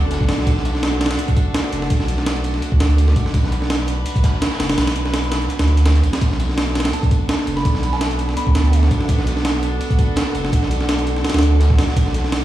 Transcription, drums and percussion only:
0.11 snare, closed hi-hat, tambourine
0.21 kick, snare
0.29 snare, open hi-hat, tambourine
0.39 snare
0.46 kick, closed hi-hat, tambourine
0.57 snare
0.65 snare, closed hi-hat, tambourine
0.75 snare
0.83 snare, open hi-hat, tambourine
0.92 snare
1.01 snare, open hi-hat, tambourine
1.06 snare, open hi-hat
1.11 snare, open hi-hat
1.19 closed hi-hat, tambourine
1.28 kick, closed hi-hat
1.36 kick, closed hi-hat, tambourine
1.54 snare, closed hi-hat, tambourine
1.64 snare
1.72 closed hi-hat, tambourine
1.82 snare
1.90 kick, closed hi-hat, tambourine
2.00 snare
2.08 closed hi-hat, tambourine
2.17 snare
2.26 snare, closed hi-hat, tambourine
2.36 snare, closed hi-hat
2.44 closed hi-hat, tambourine
2.54 snare
2.62 closed hi-hat, tambourine
2.72 kick
2.80 snare, closed hi-hat, tambourine
2.90 closed hi-hat
2.98 closed hi-hat, tambourine
3.08 snare
3.16 kick, closed hi-hat, tambourine
3.26 snare
3.34 kick, closed hi-hat, tambourine
3.44 snare
3.51 snare, closed hi-hat, tambourine
3.62 snare
3.70 snare, open hi-hat, tambourine
3.80 snare
3.88 closed hi-hat, tambourine
4.06 closed hi-hat, tambourine
4.16 kick, closed hi-hat
4.24 kick, snare, closed hi-hat, tambourine
4.34 snare
4.41 snare, closed hi-hat, tambourine
4.52 snare, tambourine
4.60 snare, open hi-hat
4.70 snare, open hi-hat, tambourine
4.78 snare, open hi-hat, tambourine
4.87 snare, open hi-hat
4.96 closed hi-hat, tambourine
5.06 snare
5.13 snare, closed hi-hat, tambourine
5.23 snare, closed hi-hat
5.32 snare, closed hi-hat, tambourine
5.42 snare, closed hi-hat
5.49 snare, closed hi-hat, tambourine
5.59 snare, closed hi-hat, tambourine
5.68 snare, closed hi-hat
5.77 snare, closed hi-hat, tambourine
5.86 snare, closed hi-hat, tambourine
5.95 snare, closed hi-hat
6.03 closed hi-hat, tambourine
6.13 snare, open hi-hat
6.21 kick, closed hi-hat, tambourine
6.31 snare
6.39 snare, closed hi-hat, tambourine
6.49 snare
6.57 snare, open hi-hat, tambourine
6.68 snare
6.75 snare, open hi-hat, tambourine
6.80 snare, open hi-hat
6.85 snare, open hi-hat
6.93 closed hi-hat, tambourine
7.03 kick, closed hi-hat
7.11 kick, closed hi-hat, tambourine
7.29 snare, closed hi-hat, tambourine
7.39 snare
7.47 closed hi-hat, tambourine
7.57 snare
7.65 kick, closed hi-hat, tambourine
7.75 snare
7.83 closed hi-hat, tambourine
7.92 snare
8.01 snare, closed hi-hat, tambourine
8.11 snare, closed hi-hat
8.19 closed hi-hat, tambourine
8.29 snare
8.37 closed hi-hat, tambourine
8.47 kick
8.55 snare, closed hi-hat, tambourine
8.65 closed hi-hat
8.73 closed hi-hat, tambourine
8.83 snare
8.91 kick, closed hi-hat, tambourine
9.01 snare
9.08 kick, closed hi-hat, tambourine
9.19 snare
9.26 snare, closed hi-hat, tambourine
9.37 snare
9.45 snare, open hi-hat, tambourine
9.54 snare
9.63 closed hi-hat, tambourine
9.81 closed hi-hat, tambourine
9.91 kick, closed hi-hat
9.99 kick, closed hi-hat, tambourine
10.16 snare, closed hi-hat, tambourine
10.27 snare
10.34 closed hi-hat, tambourine
10.45 snare
10.52 kick, closed hi-hat, tambourine
10.62 snare
10.71 closed hi-hat, tambourine
10.80 snare
10.88 snare, closed hi-hat, tambourine
10.99 snare, closed hi-hat
11.06 closed hi-hat, tambourine
11.16 snare
11.24 snare, open hi-hat, tambourine
11.30 snare, open hi-hat
11.34 snare, open hi-hat
11.39 snare, open hi-hat
11.43 closed hi-hat, tambourine
11.60 snare, closed hi-hat, tambourine
11.70 kick, snare
11.78 snare, open hi-hat, tambourine
11.88 snare
11.96 kick, closed hi-hat, tambourine
12.06 snare
12.14 snare, closed hi-hat, tambourine
12.24 snare
12.32 snare, open hi-hat, tambourine

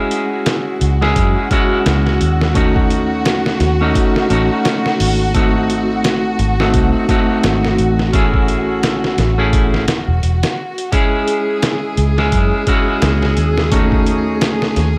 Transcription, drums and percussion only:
0.11 closed hi-hat
0.46 snare, closed hi-hat
0.81 closed hi-hat
1.02 snare
1.16 kick, closed hi-hat
1.51 kick, closed hi-hat
1.86 snare, closed hi-hat
2.07 snare
2.21 closed hi-hat
2.41 snare
2.55 kick, closed hi-hat
2.76 kick
2.90 closed hi-hat
3.25 snare, closed hi-hat
3.46 snare
3.60 snare, closed hi-hat
3.95 kick, closed hi-hat
4.16 snare
4.30 closed hi-hat
4.65 snare, closed hi-hat
4.86 snare
5.00 open hi-hat
5.35 kick, closed hi-hat
5.70 closed hi-hat
6.04 snare, closed hi-hat
6.39 closed hi-hat
6.60 snare
6.74 kick, closed hi-hat
7.09 kick, closed hi-hat
7.44 snare, closed hi-hat
7.65 snare
7.78 closed hi-hat
7.99 snare
8.13 kick, closed hi-hat
8.34 kick
8.48 closed hi-hat
8.83 snare, closed hi-hat
9.04 snare
9.18 snare, closed hi-hat
9.53 kick, closed hi-hat
9.74 snare
9.88 snare, closed hi-hat
10.23 closed hi-hat
10.43 snare, closed hi-hat
10.78 closed hi-hat
10.92 kick, closed hi-hat
11.28 closed hi-hat
11.62 snare, closed hi-hat
11.97 closed hi-hat
12.18 snare
12.32 kick, closed hi-hat
12.67 kick, closed hi-hat
13.02 snare, closed hi-hat
13.23 snare
13.37 closed hi-hat
13.58 snare
13.72 kick, closed hi-hat
13.92 kick
14.06 closed hi-hat
14.41 snare, closed hi-hat
14.62 snare
14.76 snare, closed hi-hat

